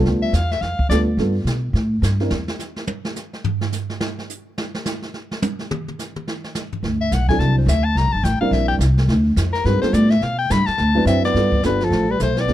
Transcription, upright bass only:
0, 0, Header, 1, 3, 480
1, 0, Start_track
1, 0, Tempo, 282353
1, 90, Time_signature, 4, 2, 24, 8
1, 21308, End_track
2, 0, Start_track
2, 0, Title_t, "Upright bass"
2, 0, Program_c, 0, 32
2, 68, Note_on_c, 0, 38, 80
2, 545, Note_off_c, 0, 38, 0
2, 555, Note_on_c, 0, 40, 80
2, 1028, Note_off_c, 0, 40, 0
2, 1036, Note_on_c, 0, 41, 74
2, 1311, Note_off_c, 0, 41, 0
2, 1514, Note_on_c, 0, 38, 80
2, 1982, Note_off_c, 0, 38, 0
2, 1992, Note_on_c, 0, 43, 76
2, 2446, Note_off_c, 0, 43, 0
2, 2456, Note_on_c, 0, 47, 79
2, 2939, Note_off_c, 0, 47, 0
2, 2946, Note_on_c, 0, 45, 83
2, 3424, Note_off_c, 0, 45, 0
2, 3433, Note_on_c, 0, 43, 87
2, 3907, Note_off_c, 0, 43, 0
2, 3921, Note_on_c, 0, 40, 72
2, 4206, Note_off_c, 0, 40, 0
2, 11606, Note_on_c, 0, 38, 72
2, 12076, Note_off_c, 0, 38, 0
2, 12096, Note_on_c, 0, 35, 79
2, 12550, Note_off_c, 0, 35, 0
2, 12560, Note_on_c, 0, 36, 85
2, 13017, Note_off_c, 0, 36, 0
2, 13027, Note_on_c, 0, 38, 89
2, 13506, Note_off_c, 0, 38, 0
2, 13522, Note_on_c, 0, 36, 77
2, 13687, Note_off_c, 0, 36, 0
2, 13687, Note_on_c, 0, 34, 57
2, 13824, Note_off_c, 0, 34, 0
2, 13835, Note_on_c, 0, 31, 71
2, 13988, Note_off_c, 0, 31, 0
2, 13998, Note_on_c, 0, 33, 93
2, 14275, Note_off_c, 0, 33, 0
2, 14468, Note_on_c, 0, 34, 80
2, 14928, Note_off_c, 0, 34, 0
2, 14938, Note_on_c, 0, 36, 86
2, 15422, Note_off_c, 0, 36, 0
2, 15439, Note_on_c, 0, 38, 82
2, 15907, Note_off_c, 0, 38, 0
2, 15917, Note_on_c, 0, 41, 91
2, 16385, Note_off_c, 0, 41, 0
2, 16395, Note_on_c, 0, 43, 82
2, 16673, Note_off_c, 0, 43, 0
2, 16878, Note_on_c, 0, 45, 95
2, 17345, Note_off_c, 0, 45, 0
2, 17355, Note_on_c, 0, 47, 77
2, 17830, Note_off_c, 0, 47, 0
2, 17851, Note_on_c, 0, 43, 95
2, 18121, Note_off_c, 0, 43, 0
2, 18329, Note_on_c, 0, 38, 78
2, 18776, Note_off_c, 0, 38, 0
2, 18786, Note_on_c, 0, 42, 91
2, 19265, Note_off_c, 0, 42, 0
2, 19279, Note_on_c, 0, 43, 76
2, 19751, Note_off_c, 0, 43, 0
2, 19773, Note_on_c, 0, 31, 77
2, 20227, Note_off_c, 0, 31, 0
2, 20237, Note_on_c, 0, 33, 81
2, 20711, Note_off_c, 0, 33, 0
2, 20741, Note_on_c, 0, 35, 82
2, 21203, Note_off_c, 0, 35, 0
2, 21211, Note_on_c, 0, 38, 78
2, 21308, Note_off_c, 0, 38, 0
2, 21308, End_track
3, 0, Start_track
3, 0, Title_t, "Muted upright bass strokes"
3, 1345, Note_on_c, 9, 29, 39
3, 1515, Note_off_c, 9, 29, 0
3, 14296, Note_on_c, 9, 29, 42
3, 14466, Note_off_c, 9, 29, 0
3, 16703, Note_on_c, 9, 29, 41
3, 16873, Note_off_c, 9, 29, 0
3, 18150, Note_on_c, 9, 29, 42
3, 18320, Note_off_c, 9, 29, 0
3, 21308, End_track
0, 0, End_of_file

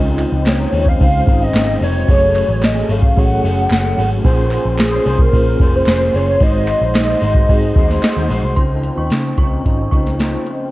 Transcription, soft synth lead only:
0, 0, Header, 1, 2, 480
1, 0, Start_track
1, 0, Key_signature, -5, "major"
1, 0, Tempo, 540541
1, 1852, Time_signature, 4, 2, 24, 8
1, 9513, End_track
2, 0, Start_track
2, 0, Title_t, "Soft synth lead"
2, 0, Program_c, 0, 80
2, 422, Note_on_c, 0, 73, 85
2, 782, Note_on_c, 0, 77, 98
2, 795, Note_off_c, 0, 73, 0
2, 898, Note_off_c, 0, 77, 0
2, 903, Note_on_c, 0, 77, 103
2, 1269, Note_on_c, 0, 75, 97
2, 1283, Note_off_c, 0, 77, 0
2, 1621, Note_off_c, 0, 75, 0
2, 1629, Note_on_c, 0, 73, 107
2, 2347, Note_on_c, 0, 75, 110
2, 2360, Note_off_c, 0, 73, 0
2, 2586, Note_on_c, 0, 77, 105
2, 2599, Note_off_c, 0, 75, 0
2, 2825, Note_on_c, 0, 78, 125
2, 2838, Note_off_c, 0, 77, 0
2, 3298, Note_off_c, 0, 78, 0
2, 3309, Note_on_c, 0, 78, 107
2, 3635, Note_off_c, 0, 78, 0
2, 4267, Note_on_c, 0, 68, 91
2, 4625, Note_on_c, 0, 70, 107
2, 4638, Note_off_c, 0, 68, 0
2, 5106, Note_on_c, 0, 72, 110
2, 5119, Note_off_c, 0, 70, 0
2, 5458, Note_off_c, 0, 72, 0
2, 5464, Note_on_c, 0, 73, 105
2, 5703, Note_on_c, 0, 75, 117
2, 5716, Note_off_c, 0, 73, 0
2, 6177, Note_off_c, 0, 75, 0
2, 6184, Note_on_c, 0, 75, 114
2, 7342, Note_off_c, 0, 75, 0
2, 9513, End_track
0, 0, End_of_file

